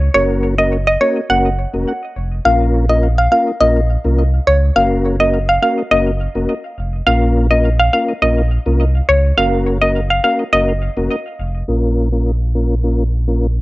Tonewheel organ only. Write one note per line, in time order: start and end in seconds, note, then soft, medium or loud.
0.14 0.55 A#3 loud
0.14 0.55 C#4 medium
0.14 0.55 F#4 medium
0.14 0.55 A#4 loud
0.58 0.77 A#3 medium
0.58 0.77 C#4 medium
0.58 0.77 F#4 medium
0.58 0.78 A#4 medium
1.01 1.21 A#3 medium
1.01 1.21 C#4 medium
1.01 1.21 F#4 medium
1.01 1.21 A#4 medium
1.29 1.50 A#3 medium
1.29 1.50 C#4 medium
1.29 1.50 F#4 medium
1.29 1.50 A#4 loud
1.74 1.93 A#3 medium
1.74 1.93 C#4 medium
1.74 1.93 F#4 medium
1.74 1.93 A#4 medium
2.45 2.85 A#3 loud
2.45 2.86 C#4 medium
2.45 2.86 F4 medium
2.45 2.86 A#4 loud
2.89 3.08 A#3 medium
2.89 3.08 C#4 medium
2.89 3.08 F4 medium
2.89 3.08 A#4 medium
3.31 3.52 A#3 medium
3.31 3.52 C#4 medium
3.31 3.52 F4 medium
3.31 3.52 A#4 medium
3.60 3.80 A#3 medium
3.60 3.81 C#4 medium
3.60 3.81 F4 medium
3.60 3.81 A#4 loud
4.04 4.23 A#3 medium
4.04 4.24 C#4 medium
4.04 4.24 F4 medium
4.04 4.24 A#4 medium
4.75 5.16 A#3 loud
4.75 5.16 C#4 medium
4.75 5.16 F#4 medium
4.75 5.16 A#4 loud
5.20 5.39 A#3 medium
5.20 5.39 C#4 medium
5.20 5.39 F#4 medium
5.20 5.39 A#4 medium
5.62 5.82 A#3 medium
5.62 5.82 C#4 medium
5.62 5.83 F#4 medium
5.62 5.83 A#4 medium
5.91 6.11 A#3 medium
5.91 6.11 C#4 medium
5.91 6.11 F#4 medium
5.91 6.12 A#4 loud
6.35 6.54 A#3 medium
6.35 6.54 C#4 medium
6.35 6.54 F#4 medium
6.35 6.54 A#4 medium
7.06 7.47 A#3 loud
7.06 7.47 C#4 medium
7.06 7.47 F4 medium
7.06 7.47 A#4 loud
7.50 7.70 A#3 medium
7.50 7.70 C#4 medium
7.50 7.70 F4 medium
7.50 7.70 A#4 medium
7.93 8.13 A#3 medium
7.93 8.13 C#4 medium
7.93 8.13 F4 medium
7.93 8.13 A#4 medium
8.22 8.42 A#3 loud
8.22 8.42 C#4 medium
8.22 8.42 F4 medium
8.22 8.42 A#4 loud
8.66 8.85 A#3 medium
8.66 8.85 C#4 medium
8.66 8.85 F4 medium
8.66 8.85 A#4 medium
9.37 9.78 A#3 loud
9.37 9.78 C#4 medium
9.37 9.78 F#4 medium
9.37 9.78 A#4 loud
9.81 10.00 A#3 medium
9.81 10.00 C#4 medium
9.81 10.01 F#4 medium
9.81 10.01 A#4 medium
10.24 10.44 A#3 medium
10.24 10.44 C#4 medium
10.24 10.44 F#4 medium
10.24 10.44 A#4 medium
10.52 10.73 A#3 medium
10.52 10.73 C#4 medium
10.52 10.73 F#4 medium
10.52 10.73 A#4 loud
10.97 11.16 A#3 medium
10.97 11.16 C#4 medium
10.97 11.16 F#4 medium
10.97 11.16 A#4 medium
11.68 12.09 A#3 medium
11.68 12.09 C#4 medium
11.68 12.09 F4 medium
11.68 12.09 A#4 medium
12.12 12.31 A#3 medium
12.12 12.31 C#4 medium
12.12 12.31 F4 medium
12.12 12.31 A#4 medium
12.54 12.75 A#3 medium
12.54 12.75 C#4 medium
12.54 12.75 F4 medium
12.54 12.75 A#4 medium
12.83 13.04 A#3 medium
12.83 13.04 C#4 medium
12.83 13.04 F4 medium
12.83 13.04 A#4 medium
13.27 13.47 A#3 medium
13.27 13.47 C#4 medium
13.27 13.47 F4 medium
13.27 13.47 A#4 medium